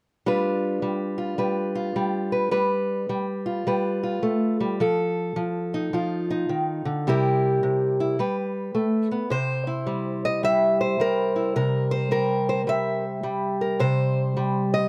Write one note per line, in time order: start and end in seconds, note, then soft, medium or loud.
0.26 0.82 G3 medium
0.26 2.51 D4 medium
0.26 1.17 F4 medium
0.26 1.38 B4 medium
0.82 1.38 G3 medium
1.18 1.75 F4 soft
1.38 1.95 G3 medium
1.38 2.31 B4 medium
1.75 2.54 F4 medium
1.96 2.50 G3 medium
2.32 2.50 B4 medium
2.51 3.08 G3 medium
2.51 3.66 B4 medium
3.09 3.66 G3 medium
3.46 4.02 F4 medium
3.67 4.22 G3 medium
3.67 4.78 B4 medium
4.03 4.78 F4 medium
4.23 4.59 A3 medium
4.60 4.81 G3 medium
4.80 5.35 F3 medium
4.80 7.07 A4 medium
5.36 5.92 F3 medium
5.74 6.29 D#4 medium
5.93 6.49 F3 medium
5.93 7.04 F4 medium
6.30 7.04 D#4 medium
6.49 6.85 D#3 medium
6.85 7.06 D3 medium
7.07 7.62 C3 medium
7.07 8.18 G3 medium
7.07 7.99 E4 medium
7.07 8.18 G4 medium
7.07 8.18 A#4 medium
7.63 8.17 C3 medium
8.00 8.17 E4 soft
8.19 8.74 G3 medium
8.19 9.30 B4 medium
8.75 9.11 A3 medium
9.11 9.32 B3 medium
9.30 11.55 C3 medium
9.30 10.24 C5 medium
9.67 11.35 E4 soft
9.87 10.43 G3 medium
10.25 10.44 D#5 medium
10.43 11.00 G3 medium
10.43 10.80 E5 loud
10.81 11.57 C5 medium
11.00 12.11 G3 medium
11.00 11.55 A#4 medium
11.36 11.59 E4 soft
11.56 13.79 C3 medium
11.56 12.11 A#4 medium
11.91 12.47 C5 medium
12.11 12.67 G3 medium
12.11 13.04 A#4 medium
12.49 12.61 C5 medium
12.67 13.23 G3 medium
12.67 13.80 E5 medium
13.23 14.36 G3 medium
13.61 13.83 A#4 medium
13.80 14.89 C3 medium
13.80 14.71 C5 medium
14.37 14.89 G3 medium
14.74 14.89 D#5 loud